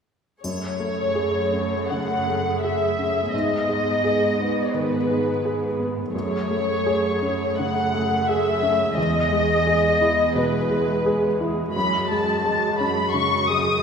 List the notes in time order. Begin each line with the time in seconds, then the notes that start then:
0.43 F#2 A3 G#4 C#5, triangle
0.80 A3
1.15 G#4
1.53 C#4
1.90 C#3 F#5
2.27 A3
2.62 G#4 E5
2.99 C#4
3.32 G#2 B3 D#5
3.69 G#3
4.04 G#4
4.40 B3
4.74 D#3 B4
5.10 G#3
5.45 G#4
5.79 B3
6.13 F#2 A3 G#4 C#5
6.51 A3
6.86 G#4
7.22 C#4
7.57 C#3 F#5
7.95 A3
8.28 G#4 E5
8.62 C#4
8.97 E2 G#3 D#5
9.32 G#3
9.67 G#4
10.01 E4
10.35 B2 B4
10.71 G#3
11.06 G#4
11.41 E4
11.74 F#2 F#4 B5
12.11 G#3 A5
12.45 G#3
12.80 C#4 B5
13.12 C#3 C#6
13.48 G#3 D#6